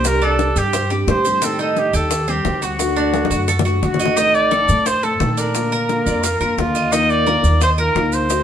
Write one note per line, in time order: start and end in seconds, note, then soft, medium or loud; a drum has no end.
0.00 0.51 C2 medium
0.00 0.21 G4 medium
0.04 0.72 C3 medium
0.04 0.73 G3 medium
0.04 0.74 C4 medium
0.04 0.73 D4 medium
0.04 0.74 G4 medium
0.04 0.26 A#4 medium
0.04 high bongo medium
0.04 maracas medium
0.22 0.55 D4 medium
0.22 0.60 A4 medium
0.22 maracas soft
0.39 high bongo medium
0.39 maracas soft
0.56 1.04 G2 medium
0.56 0.73 G4 medium
0.56 0.92 G4 medium
0.56 high bongo soft
0.56 maracas medium
0.73 0.90 C5 medium
0.73 muted nylon-string guitar stroke medium
0.73 high bongo medium
0.73 maracas medium
0.90 1.07 G3 medium
0.90 1.07 C4 medium
0.90 1.07 D4 medium
0.90 1.24 G4 medium
0.90 1.07 G4 medium
0.90 high bongo soft
0.90 maracas soft
1.08 1.88 A2 medium
1.08 1.24 G3 soft
1.08 1.25 C4 soft
1.08 1.25 D4 soft
1.08 1.24 G4 medium
1.08 1.46 C5 medium
1.08 high bongo medium
1.08 low bongo medium
1.08 maracas soft
1.25 1.42 G3 medium
1.25 1.42 C4 medium
1.25 1.42 D4 medium
1.25 1.42 G4 medium
1.25 1.42 C5 medium
1.25 high bongo soft
1.25 maracas medium
1.42 2.10 D#3 medium
1.42 2.10 G3 medium
1.42 1.59 C4 medium
1.42 2.10 C4 medium
1.42 1.60 A4 medium
1.42 high bongo medium
1.42 maracas medium
1.59 1.93 D#4 medium
1.59 1.80 A4 medium
1.59 maracas soft
1.76 1.97 G4 medium
1.76 high bongo medium
1.76 maracas soft
1.93 2.42 D#2 medium
1.93 2.27 G4 medium
1.93 2.31 A4 medium
1.93 high bongo soft
1.93 maracas medium
2.11 muted nylon-string guitar stroke medium
2.11 high bongo medium
2.11 maracas medium
2.28 2.45 G3 medium
2.28 2.61 C4 medium
2.28 2.45 C4 medium
2.28 2.65 G4 medium
2.28 high bongo soft
2.28 maracas soft
2.45 3.25 D2 medium
2.45 2.62 D#3 soft
2.45 2.62 G3 soft
2.45 2.61 C4 soft
2.45 high bongo medium
2.45 low bongo medium
2.45 maracas soft
2.62 2.79 G3 soft
2.62 2.79 C4 medium
2.62 2.96 F#4 medium
2.62 3.66 F#4 medium
2.62 high bongo soft
2.62 maracas medium
2.79 3.47 D3 medium
2.79 3.47 A3 medium
2.79 3.48 D4 medium
2.79 3.48 F#4 medium
2.79 high bongo medium
2.79 maracas medium
2.96 3.30 D4 medium
2.96 maracas soft
3.14 high bongo medium
3.14 maracas soft
3.25 high bongo medium
3.30 3.79 F#2 medium
3.30 3.48 F#4 medium
3.30 maracas medium
3.48 3.65 A4 medium
3.48 muted nylon-string guitar stroke medium
3.48 low bongo medium
3.48 maracas medium
3.59 low bongo loud
3.65 3.81 A3 soft
3.65 3.82 D4 medium
3.65 3.99 F#4 medium
3.65 3.82 F#4 medium
3.65 maracas soft
3.82 4.63 A1 medium
3.82 3.99 D3 soft
3.82 3.99 A3 soft
3.82 3.99 D4 soft
3.82 4.19 F#4 medium
3.82 3.98 F#4 soft
3.82 low bongo medium
3.82 maracas soft
3.94 low bongo medium
3.99 4.15 A3 soft
3.99 4.16 D4 soft
3.99 4.16 F#4 medium
3.99 4.16 D#5 medium
3.99 maracas medium
4.05 low bongo medium
4.16 4.50 D#3 medium
4.16 4.51 A3 medium
4.16 4.51 C4 medium
4.16 4.50 D#4 medium
4.16 4.36 D#5 loud
4.16 high bongo medium
4.16 maracas medium
4.34 4.89 D5 loud
4.34 maracas soft
4.51 4.68 D#3 medium
4.51 4.68 A3 medium
4.51 4.67 C4 medium
4.51 4.85 A4 medium
4.51 high bongo medium
4.51 maracas soft
4.68 5.17 A2 medium
4.68 4.85 A3 soft
4.68 4.85 C4 soft
4.68 high bongo soft
4.68 maracas medium
4.86 5.03 C5 medium
4.86 5.06 C5 medium
4.86 muted nylon-string guitar stroke medium
4.86 high bongo medium
4.86 maracas medium
5.03 5.20 A3 soft
5.03 5.19 C4 soft
5.03 5.37 A4 medium
5.03 5.41 A4 medium
5.03 high bongo soft
5.03 maracas soft
5.20 6.01 A#2 medium
5.20 5.54 D#3 medium
5.20 5.54 A3 medium
5.20 5.55 C4 medium
5.20 high bongo medium
5.20 low bongo medium
5.20 maracas soft
5.37 5.71 D4 medium
5.37 6.61 A#4 medium
5.37 high bongo soft
5.37 maracas medium
5.54 5.87 D3 medium
5.54 5.88 A#3 medium
5.54 5.88 D4 medium
5.54 5.89 F4 medium
5.54 high bongo medium
5.54 maracas medium
5.72 6.05 A#4 medium
5.72 maracas soft
5.89 6.05 D3 medium
5.89 6.06 A#3 medium
5.89 6.05 D4 medium
5.89 6.04 F4 medium
5.89 high bongo medium
5.89 maracas soft
6.06 6.38 F2 medium
6.06 6.22 A#3 soft
6.06 6.23 D4 soft
6.06 6.22 F4 soft
6.06 6.23 D5 medium
6.06 high bongo soft
6.06 maracas medium
6.23 6.40 F4 medium
6.23 muted nylon-string guitar stroke soft
6.23 high bongo medium
6.23 maracas medium
6.40 6.57 F2 medium
6.40 6.57 A#3 soft
6.40 6.58 D4 soft
6.40 6.57 F4 soft
6.40 6.74 A#4 medium
6.40 high bongo soft
6.40 maracas soft
6.58 7.38 D#2 medium
6.58 6.92 D3 medium
6.58 6.91 A#3 medium
6.58 6.92 D4 medium
6.58 6.92 F4 medium
6.58 6.95 F4 medium
6.58 high bongo medium
6.58 low bongo medium
6.58 maracas soft
6.75 6.92 D#5 medium
6.75 high bongo soft
6.75 maracas medium
6.92 7.25 D#3 medium
6.92 7.25 A#3 medium
6.92 7.26 D#4 medium
6.92 7.27 F4 medium
6.92 7.27 A#4 medium
6.92 7.12 D#5 loud
6.92 high bongo medium
6.92 maracas medium
7.10 7.62 D5 loud
7.10 maracas soft
7.26 7.43 D#3 medium
7.26 7.43 A#3 medium
7.26 7.43 D#4 medium
7.26 7.44 F4 medium
7.26 7.60 A#4 medium
7.26 7.42 A#4 medium
7.26 high bongo medium
7.26 maracas soft
7.43 7.92 D#2 medium
7.43 7.60 D#4 soft
7.43 7.60 F4 soft
7.43 7.60 A#4 soft
7.43 high bongo soft
7.43 maracas medium
7.61 7.70 C5 medium
7.61 7.78 D#5 medium
7.61 muted nylon-string guitar stroke medium
7.61 high bongo medium
7.61 maracas medium
7.78 7.94 D#4 soft
7.78 7.95 F4 soft
7.78 7.95 A#4 soft
7.78 8.12 A#4 medium
7.78 8.15 A#4 medium
7.78 high bongo soft
7.78 maracas soft
7.95 8.43 D2 medium
7.95 8.29 A#3 medium
7.95 8.29 D#4 medium
7.95 8.29 F4 medium
7.95 8.30 A#4 medium
7.95 high bongo medium
7.95 low bongo medium
7.95 maracas soft
8.12 8.43 C5 medium
8.12 high bongo soft
8.12 maracas medium
8.29 8.43 D3 medium
8.29 8.43 A3 medium
8.29 8.43 C4 medium
8.29 8.43 F#4 medium
8.29 high bongo medium
8.29 maracas medium